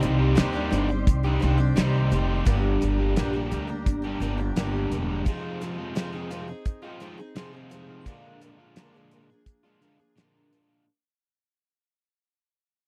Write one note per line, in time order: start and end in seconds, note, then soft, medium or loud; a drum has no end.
0.00 0.35 C2 medium
0.00 0.35 C3 medium
0.00 0.35 D#3 medium
0.00 0.21 G3 medium
0.00 0.35 G3 medium
0.00 0.35 C4 medium
0.00 0.19 D#4 medium
0.00 2.43 D#4 medium
0.00 0.19 G4 loud
0.00 0.36 G4 medium
0.00 5.22 D5 medium
0.00 2.43 C6 medium
0.00 closed hi-hat medium
0.19 0.37 G3 medium
0.19 0.36 D#4 medium
0.19 0.37 G4 medium
0.35 0.70 D#2 medium
0.35 0.53 C3 medium
0.35 0.89 C3 medium
0.35 0.54 D#3 medium
0.35 0.89 D#3 medium
0.35 0.54 G3 medium
0.35 0.55 G3 medium
0.35 0.54 C4 medium
0.35 0.53 D4 loud
0.35 0.54 D#4 loud
0.35 0.51 G4 loud
0.35 0.54 G4 loud
0.35 snare loud
0.35 closed hi-hat medium
0.53 0.89 G3 soft
0.53 0.69 G3 soft
0.53 0.71 C4 medium
0.53 0.71 D4 medium
0.53 0.89 D#4 medium
0.53 0.71 G4 medium
0.53 0.88 G4 medium
0.70 1.04 G1 medium
0.70 0.88 G3 medium
0.70 0.89 C4 medium
0.70 0.90 D4 medium
0.70 0.88 G4 medium
0.70 closed hi-hat medium
0.89 1.25 G3 soft
0.89 1.24 C4 medium
0.89 1.22 G4 medium
0.89 muted overdriven electric guitar stroke medium
1.07 1.39 C2 medium
1.07 kick loud
1.07 closed hi-hat medium
1.23 1.38 G3 soft
1.23 1.41 G3 medium
1.23 1.39 C4 soft
1.23 1.41 D4 medium
1.23 1.42 D#4 medium
1.23 1.41 G4 medium
1.23 1.42 G4 medium
1.39 1.75 C2 medium
1.39 1.59 D#3 medium
1.39 1.58 G3 medium
1.39 1.59 G3 medium
1.39 1.58 C4 medium
1.39 1.57 D4 medium
1.39 1.59 D#4 medium
1.39 1.56 G4 medium
1.39 closed hi-hat medium
1.44 1.58 G4 medium
1.57 1.76 G3 soft
1.57 1.76 C4 medium
1.57 1.76 D4 medium
1.57 1.76 G4 medium
1.57 muted overdriven electric guitar stroke soft
1.76 2.09 C2 medium
1.76 2.11 C3 medium
1.76 2.44 C3 medium
1.76 2.11 D#3 medium
1.76 2.09 G3 medium
1.76 2.12 G3 loud
1.76 2.10 C4 medium
1.76 2.12 D#4 loud
1.76 2.12 G4 loud
1.76 2.13 G4 loud
1.76 snare loud
1.76 closed hi-hat medium
2.10 2.44 F1 medium
2.10 2.44 D#3 medium
2.10 2.45 G3 medium
2.10 2.29 G3 medium
2.10 2.46 C4 medium
2.10 2.29 D#4 medium
2.10 2.46 G4 medium
2.10 2.28 G4 medium
2.10 closed hi-hat medium
2.29 2.45 G3 medium
2.29 2.45 D#4 medium
2.29 2.44 G4 medium
2.45 2.79 G1 medium
2.45 2.81 G2 medium
2.45 3.15 G2 medium
2.45 2.81 D3 medium
2.45 3.16 D3 medium
2.45 2.80 G3 medium
2.45 3.00 G3 medium
2.45 2.99 A#3 medium
2.45 2.81 A#3 medium
2.45 2.81 D4 medium
2.45 2.99 D4 medium
2.45 5.23 G4 medium
2.45 2.82 G4 medium
2.45 2.98 G4 loud
2.45 5.24 A#5 medium
2.45 kick medium
2.45 closed hi-hat medium
2.81 3.15 G1 medium
2.81 3.16 G3 medium
2.81 3.16 A#3 medium
2.81 3.17 D4 medium
2.81 3.18 G4 medium
2.81 closed hi-hat medium
2.99 3.16 G3 medium
2.99 3.17 A#3 medium
2.99 3.17 D4 medium
2.99 3.17 G4 medium
3.16 3.49 A#1 medium
3.16 3.69 G2 medium
3.16 3.34 G2 medium
3.16 3.69 D3 medium
3.16 3.34 D3 medium
3.16 3.35 G3 medium
3.16 3.34 G3 medium
3.16 3.34 A#3 medium
3.16 3.34 D4 medium
3.16 3.33 D4 loud
3.16 3.33 G4 loud
3.16 3.32 G4 loud
3.16 snare loud
3.16 closed hi-hat medium
3.33 3.50 G3 medium
3.33 3.69 G3 medium
3.33 3.50 A#3 medium
3.33 3.69 A#3 medium
3.33 3.51 D4 medium
3.33 3.69 D4 medium
3.33 3.51 G4 medium
3.33 3.69 G4 medium
3.51 3.84 D2 medium
3.51 3.68 G3 medium
3.51 3.68 A#3 medium
3.51 3.67 D4 medium
3.51 3.66 G4 medium
3.51 closed hi-hat medium
3.67 4.04 G3 medium
3.67 4.03 A#3 medium
3.67 4.02 D4 medium
3.67 4.01 G4 medium
3.67 muted overdriven electric guitar stroke medium
3.86 4.19 G1 medium
3.86 kick loud
3.86 closed hi-hat medium
4.02 4.19 G3 soft
4.02 4.20 A#3 medium
4.02 4.21 A#3 medium
4.02 4.21 D4 medium
4.02 4.22 D4 medium
4.02 4.20 G4 medium
4.02 4.22 G4 medium
4.06 4.20 G3 medium
4.20 4.53 G1 medium
4.20 4.38 G3 medium
4.20 4.39 G3 medium
4.20 4.39 A#3 medium
4.20 4.38 D4 medium
4.20 4.39 D4 medium
4.20 4.37 G4 medium
4.20 4.39 G4 medium
4.20 closed hi-hat medium
4.38 4.56 G3 medium
4.38 4.56 A#3 medium
4.38 4.56 D4 medium
4.38 4.56 G4 medium
4.38 muted overdriven electric guitar stroke soft
4.56 4.89 G1 medium
4.56 4.91 G2 medium
4.56 5.24 G2 medium
4.56 4.91 D3 medium
4.56 5.24 D3 medium
4.56 4.90 G3 medium
4.56 4.91 A#3 medium
4.56 4.90 A#3 loud
4.56 4.92 D4 medium
4.56 4.91 D4 loud
4.56 4.92 G4 loud
4.56 4.91 G4 loud
4.56 snare loud
4.56 closed hi-hat medium
4.91 5.24 E1 medium
4.91 5.09 G3 medium
4.91 5.25 G3 medium
4.91 5.09 A#3 medium
4.91 5.26 A#3 medium
4.91 5.08 D4 medium
4.91 5.26 D4 medium
4.91 5.07 G4 medium
4.91 5.27 G4 medium
4.91 closed hi-hat medium
5.09 5.25 G3 medium
5.09 5.25 A#3 medium
5.09 5.24 D4 medium
5.09 5.24 G4 medium
5.25 5.95 F2 medium
5.25 5.95 C3 medium
5.25 5.59 F3 medium
5.25 5.79 F3 medium
5.25 5.79 G#3 medium
5.25 5.61 C4 medium
5.25 5.78 C4 medium
5.25 5.61 D#4 loud
5.25 5.77 F4 medium
5.25 5.62 G#4 medium
5.25 kick loud
5.25 closed hi-hat medium
5.61 5.94 F3 medium
5.61 5.94 C4 medium
5.61 5.95 D#4 medium
5.61 5.96 G#4 medium
5.61 snare soft
5.61 closed hi-hat medium
5.78 5.97 F3 soft
5.78 5.97 G#3 medium
5.78 5.97 C4 medium
5.78 5.98 F4 medium
5.95 6.48 F2 medium
5.95 6.49 C3 medium
5.95 6.13 F3 medium
5.95 6.15 F3 medium
5.95 6.14 G#3 medium
5.95 6.13 C4 medium
5.95 6.12 C4 medium
5.95 6.12 D#4 loud
5.95 6.12 F4 loud
5.95 6.11 G#4 medium
5.95 snare loud
5.95 closed hi-hat medium
6.13 6.48 F3 soft
6.13 6.48 G#3 medium
6.13 6.47 C4 medium
6.13 6.30 C4 soft
6.13 6.31 D#4 medium
6.13 6.48 F4 medium
6.13 6.31 G#4 medium
6.30 6.48 F3 medium
6.30 6.49 C4 medium
6.30 6.48 D#4 medium
6.30 6.46 G#4 medium
6.30 closed hi-hat medium
6.48 6.83 C4 soft
6.48 6.82 D#4 soft
6.48 6.80 G#4 medium
6.48 muted overdriven electric guitar stroke medium
6.66 kick medium
6.66 closed hi-hat medium
6.82 7.01 F3 medium
6.82 7.01 G#3 medium
6.82 7.01 C4 medium
6.82 7.00 C4 soft
6.82 7.01 D#4 soft
6.82 7.03 F4 medium
6.82 7.00 G#4 medium
7.00 7.18 F3 medium
7.00 7.20 F3 medium
7.00 7.20 G#3 medium
7.00 7.19 C4 medium
7.00 7.18 D#4 medium
7.00 7.19 F4 medium
7.00 7.17 G#4 medium
7.00 closed hi-hat medium
7.18 7.35 C4 soft
7.18 7.36 D#4 medium
7.18 7.36 G#4 medium
7.18 muted overdriven electric guitar stroke soft
7.36 8.04 F2 medium
7.36 8.04 C3 loud
7.36 7.53 F3 medium
7.36 7.70 F3 loud
7.36 7.71 G#3 medium
7.36 7.54 C4 medium
7.36 7.71 C4 loud
7.36 7.53 D#4 medium
7.36 7.73 F4 loud
7.36 7.52 G#4 medium
7.36 snare loud
7.36 closed hi-hat medium
7.53 7.70 C4 soft
7.53 7.71 D#4 soft
7.53 7.71 G#4 medium
7.70 8.06 F3 medium
7.70 7.90 F3 medium
7.70 7.89 G#3 medium
7.70 8.06 C4 medium
7.70 7.88 C4 medium
7.70 8.07 D#4 medium
7.70 7.88 F4 medium
7.70 8.07 G#4 medium
7.70 closed hi-hat medium
7.89 8.06 F3 soft
7.89 8.07 G#3 medium
7.89 8.04 C4 medium
7.89 8.08 F4 medium
8.06 8.41 A#2 medium
8.06 8.74 A#2 medium
8.06 8.41 D3 medium
8.06 8.75 D3 medium
8.06 8.39 F3 medium
8.06 8.59 G#3 medium
8.06 8.40 A#3 medium
8.06 8.58 D4 medium
8.06 8.41 D4 medium
8.06 8.57 F4 medium
8.06 8.42 G#4 medium
8.06 kick medium
8.06 closed hi-hat medium
8.40 8.76 F3 medium
8.40 8.77 A#3 medium
8.40 8.77 D4 medium
8.40 8.77 G#4 medium
8.40 closed hi-hat medium
8.58 8.75 G#3 soft
8.58 8.76 D4 medium
8.58 8.76 F4 medium
8.76 9.29 A#2 medium
8.76 8.94 A#2 medium
8.76 9.29 D3 medium
8.76 8.95 D3 medium
8.76 8.95 F3 medium
8.76 8.94 G#3 medium
8.76 8.95 A#3 medium
8.76 8.93 D4 medium
8.76 8.95 D4 medium
8.76 8.92 F4 medium
8.76 8.93 G#4 medium
8.76 snare medium
8.76 closed hi-hat medium
8.93 9.28 G#3 medium
8.93 9.28 D4 medium
8.93 9.12 D4 medium
8.93 9.28 F4 medium
8.93 9.12 G#4 medium
8.97 9.11 F3 soft
8.97 9.12 A#3 medium
9.11 9.29 F3 medium
9.11 9.30 A#3 medium
9.11 9.30 D4 medium
9.11 9.29 G#4 medium
9.11 closed hi-hat medium
9.29 9.65 A#3 soft
9.29 9.64 D4 soft
9.29 9.63 G#4 soft
9.29 muted overdriven electric guitar stroke medium
9.33 9.66 F3 soft
9.46 kick loud
9.46 closed hi-hat medium
9.63 9.81 G#3 soft
9.63 9.81 A#3 medium
9.63 9.81 D4 medium
9.63 9.82 D4 soft
9.63 9.82 F4 medium
9.63 9.81 G#4 medium
9.68 9.80 F3 soft
9.81 9.99 D3 medium
9.81 9.99 F3 medium
9.81 9.99 G#3 medium
9.81 9.99 A#3 medium
9.81 9.98 D4 medium
9.81 9.99 D4 medium
9.81 9.98 F4 medium
9.81 9.98 G#4 medium
9.81 closed hi-hat medium
9.99 10.16 F3 soft
9.99 10.17 A#3 soft
9.99 10.17 D4 medium
9.99 10.17 G#4 medium
9.99 muted overdriven electric guitar stroke soft
10.16 10.84 A#2 medium
10.16 10.52 A#2 medium
10.16 10.51 D3 medium
10.16 10.52 D3 medium
10.16 10.50 F3 medium
10.16 10.51 G#3 medium
10.16 10.52 A#3 medium
10.16 10.52 D4 medium
10.16 10.53 D4 medium
10.16 10.53 F4 loud
10.16 10.53 G#4 medium
10.16 snare medium
10.16 closed hi-hat medium
10.52 10.85 D3 medium
10.52 10.87 F3 medium
10.52 10.69 G#3 medium
10.52 10.87 A#3 medium
10.52 10.68 D4 medium
10.52 10.88 D4 medium
10.52 10.67 F4 medium
10.52 closed hi-hat medium
10.69 10.85 G#3 medium
10.69 10.85 D4 medium
10.69 10.84 F4 medium